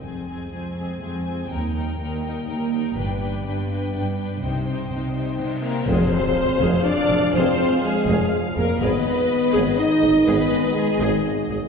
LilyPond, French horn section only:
\new Staff \with { instrumentName = "French horn section" } { \time 3/4 \key f \dorian \tempo 4 = 123 << { c'2. | bes2. | b2. | ees'2~ ees'8 bes8 |
c'2 d'4 | c'4 aes4 r8 bes8 | ces'2 ees'4 | ces'4 aes4 r4 | } \\ { aes2. | g2.~ | g2. | g2~ g8 r8 |
r2. | r2. | r2. | r2. | } >> }